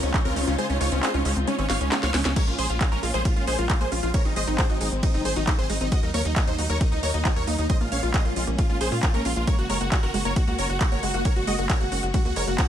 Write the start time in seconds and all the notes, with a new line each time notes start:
Already playing: C#3 G#3 C4 D#4 F4
0.03 C#2 C4 C#4, closed hi-hat
0.14 G#3, kick, clap, closed hi-hat
0.25 C#2 C4 C#4 A#4, closed hi-hat
0.36 C#2 C#4, open hi-hat
0.47 C#2 C#4 F4, closed hi-hat
0.58 G#3 G#4 C5, closed hi-hat
0.70 C#2 C4 C#4, closed hi-hat
0.81 C#2 G#3 F4 C#5, open hi-hat
0.92 C#2 C4 C#4, closed hi-hat
1.03 C#4 G#4 C5, clap, closed hi-hat
1.14 C#2 C#4 F4, closed hi-hat
1.25 C#2 G#3 C#4, open hi-hat
1.36 C#2 C4, closed hi-hat
1.47 G#3 C#4, closed hi-hat
1.58 G#1 C4 C#4, closed hi-hat
1.70 G#1 C4 C#5 F5, snare, open hi-hat
1.81 C#2 G#3 C#4, closed hi-hat
1.92 G#3 C#4, snare, clap, closed hi-hat
2.03 C#2 C5 C#5 F5, snare, closed hi-hat
2.14 C#2 C#4, snare, open hi-hat
2.25 C#2 C#4 G#4, snare, closed hi-hat
2.36 G#3 A#3 C#4 A#4 C#5, kick, closed hi-hat, crash, ride
2.47 A#1 A#3 F4, closed hi-hat
2.58 A#1 C#4 G#4 C5, open hi-hat
2.70 A#1 F4, closed hi-hat
2.81 G#3 F4, kick, clap, closed hi-hat, ride
2.92 A#1 A#3 C#4 A#4, closed hi-hat
3.03 A#1 G#3 F4, open hi-hat
3.14 A#1 A#3 G#4 C5, closed hi-hat
3.25 C#4 F4, kick, closed hi-hat, ride
3.36 G#1 F4, closed hi-hat
3.47 A#1 G#3 G#4 C5, open hi-hat
3.58 A#1 A#3 F4, closed hi-hat
3.70 G#3 F4, kick, clap, closed hi-hat, ride
3.81 A#1 A#3 G#4 C5, closed hi-hat
3.92 A#1 C#4 F4, open hi-hat
4.03 A#1 F4, closed hi-hat
4.14 F#3 G#3 C4 A#4 C#5, kick, closed hi-hat, ride
4.25 G#1 C4 D#4, closed hi-hat
4.36 G#1 G#3 C5 D#5, open hi-hat
4.47 G#1 C4 D#4, closed hi-hat
4.58 G#4 C5, kick, clap, closed hi-hat, ride
4.70 G#1 D#4 F#4, closed hi-hat
4.81 G#1 G#3 D#4, open hi-hat
4.92 G#1 C4, closed hi-hat
5.03 G#3 D#4, kick, closed hi-hat, ride
5.14 F#1 C4 D#4, closed hi-hat
5.25 G#1 D#4 G#4 C5, open hi-hat
5.36 G#1 D#4 F#4, closed hi-hat
5.47 G#3 D#4, kick, clap, closed hi-hat, ride
5.59 G#1 C4 G#4 C5, closed hi-hat
5.70 G#1 G#3 D#4, open hi-hat
5.81 G#1 C4 D#4, closed hi-hat
5.92 A#3 D#4 F#4 D#5, kick, closed hi-hat, ride
6.03 D#2 D#4 A#4, closed hi-hat
6.14 D#2 A#3 A#4 C#5, open hi-hat
6.25 D#2 D#4, closed hi-hat
6.36 A#3 D#4, kick, clap, closed hi-hat, ride
6.47 D#2 D#4 C5, closed hi-hat
6.58 D#2 D#4 F#4, open hi-hat
6.70 D#2 A#4 C#5, closed hi-hat
6.81 A#3 D#4, kick, closed hi-hat, ride
6.92 C#2 D#4, closed hi-hat
7.03 D#2 A#3 A#4 C#5, open hi-hat
7.14 D#2 D#4, closed hi-hat
7.25 D#4 F#4, kick, clap, closed hi-hat, ride
7.36 D#2 A#4 C#5, closed hi-hat
7.47 D#2 A#3 D#4, open hi-hat
7.58 D#2 D#4, closed hi-hat
7.70 G#3 C#4 C5 D#5, kick, closed hi-hat, ride
7.81 A#1 A#3 F4, closed hi-hat
7.92 A#1 C#4 C#5 F5, open hi-hat
8.03 A#1 F4, closed hi-hat
8.14 G#3 C5 D#5, kick, clap, closed hi-hat, ride
8.25 A#1 A#3 F4, closed hi-hat
8.36 A#1 G#3 F4, open hi-hat
8.47 A#1 A#3, closed hi-hat
8.58 C#4 F4, kick, closed hi-hat, ride
8.70 G#1 F4, closed hi-hat
8.81 A#1 G#4 C5, open hi-hat
8.92 A#2 F4 C#5, open hi-hat
9.03 A#3 F4, kick, clap, closed hi-hat, ride
9.14 A#1 A#3 C#4 A#4, closed hi-hat
9.25 A#1 C#4 F4, open hi-hat
9.36 A#1 F4, closed hi-hat
9.47 G#3 F#4 A#4 C#5, kick, closed hi-hat, ride
9.59 F#1 A#3 F#4, closed hi-hat
9.70 F#1 G#3 A#4 C#5, open hi-hat
9.81 F#1 A#3 F#4, closed hi-hat
9.92 C#4 F#4, kick, clap, closed hi-hat, ride
10.03 F#1 F#4 A#4, closed hi-hat
10.14 F#1 G#3 F#4, open hi-hat
10.25 F#1 A#3 A#4 C#5, closed hi-hat
10.36 G#3 F#4, kick, closed hi-hat, ride
10.47 C#2 A#3 F#4, closed hi-hat
10.58 F#1 C#4 A#4 C#5, open hi-hat
10.70 F#1 F#4, closed hi-hat
10.81 G#3 F#4, kick, clap, closed hi-hat, ride
10.92 F#1 A#3 A#4 C#5, closed hi-hat
11.03 F#1 G#3 F#4, open hi-hat
11.14 F#1 A#3 F#4, closed hi-hat
11.25 C#4 A#4 C#5, kick, closed hi-hat, ride
11.36 F#1 F#4, closed hi-hat
11.47 F#1 G#3 F#4 D#5, open hi-hat
11.58 F#1 A#3 F#4, closed hi-hat
11.70 G#3 A#4 C#5, kick, clap, closed hi-hat, ride
11.81 F#1 A#3 F#4, closed hi-hat
11.92 F#1 C#4 F#4, open hi-hat
12.03 F#1 F#4, closed hi-hat
12.14 G#3 F#4, kick, closed hi-hat, ride
12.25 C#2 A#3 F#4, closed hi-hat
12.36 F#1 G#3 A#4 C#5, open hi-hat
12.47 F#1 A#3 F#4, closed hi-hat
12.58 C#4 F#4, kick, clap, closed hi-hat, ride